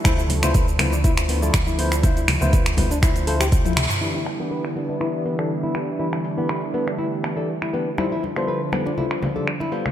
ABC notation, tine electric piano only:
X:1
M:4/4
L:1/16
Q:"Swing 16ths" 1/4=121
K:Ephr
V:1 name="Tine electric piano"
[EFc] z2 [EFc]2 z [EFc] z [EFc]3 [EFd] z2 [EFc] z | [EFc] z2 [EFc]2 z [EFc] z [EFc]2 [EFc] z2 [EFc] z2 | [E,DGB] z2 [E,DGB]2 z [E,DGB] z [E,DGB]3 [E,DGd] z2 [E,DGB] z | [E,DGB] z2 [E,DGB]2 z [E,DGB] z [E,DGB]3 [E,DGd] z2 [E,DGB] z |
[G,FAc] z2 [G,FAc]2 z [G,FAc] z [G,FAc]3 [G,FAd] z2 [G,FAc] z |]